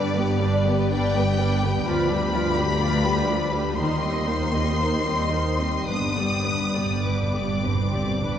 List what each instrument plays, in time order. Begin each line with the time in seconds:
Already playing: double bass section G1, cello section G2, harp G2 D3 B3 D4 B4 D5, viola section G3 D4, violin section B4 D5
0.15 harp D3, viola section B3, violin section G4 B4
0.40 viola section G3 D4, violin section B4 D5, harp D5
0.66 viola section B3, violin section G4 B4, harp B4
0.90 viola section G3 D4, violin section B4 D5 G5, harp D5
1.15 viola section B3, harp D4, violin section G4 B4
1.39 viola section G3 D4, harp B3, violin section B4 D5
1.63 harp D3, viola section B3, violin section G4 B4
1.86 double bass section D2, cello section D2, harp D3, viola section F3 F4, violin section B4 D5 B5
2.09 harp G3, viola section G3 D4, violin section G4 B4
2.33 viola section F3 F4, violin section B4 D5, harp D5
2.57 viola section G3 D4, harp G4, violin section G4 B4
2.79 viola section F3 F4, violin section B4 D5, harp F5
3.03 viola section G3 D4, violin section G4 B4, harp D5
3.26 viola section F3 F4, harp F4, violin section B4 D5
3.50 viola section G3 D4, harp D4, violin section G4 B4
3.76 double bass section D#2, cello section D#2, viola section D#3 D#4, harp D#3, violin section D#4 C5 C6
4.00 viola section G3 C4, harp D#4, violin section G4 D#5
4.25 viola section D#3 D#4, violin section D#4 C5, harp G4
4.52 viola section G3 C4, violin section G4 D#5, harp D#5
4.77 viola section D#3 D#4, violin section D#4 C5, harp C6
5.04 viola section G3 C4, violin section G4 D#5, harp G4
5.30 viola section D#3 D#4, violin section D#4 C5, harp C5
5.58 harp G3, viola section G3 C4, violin section G4 D#5
5.86 double bass section G1, cello section G2, harp G2, timpani G2, viola section B3 D4, violin section B4 D#6
5.97 timpani G2
6.07 timpani G2
6.14 timpani G2, harp G3, viola section G3, violin section G4 D5
6.19 viola section B3
6.23 timpani G2
6.31 timpani G2
6.42 timpani G2, violin section B4
6.46 timpani G2, viola section B3 D4, harp B4
6.75 timpani G2, viola section G3 B3, violin section G4 D5, harp G4
6.86 timpani G2
6.95 timpani G2
7.04 timpani G2, viola section B3, violin section B4 D6, harp D5
7.13 timpani G2
7.22 timpani G2
7.31 timpani G2, violin section G4
7.35 harp B4, violin section D5
7.40 timpani G2
7.49 timpani G2
7.57 timpani G2
7.64 timpani G2, viola section C4, harp D4, violin section B4
7.75 timpani G2
7.84 timpani G2
7.93 timpani G2, harp D3, violin section G4 D5
8.02 timpani G2
8.11 timpani G2
8.21 timpani G2, harp G3, viola section D4, violin section B4
8.30 timpani G2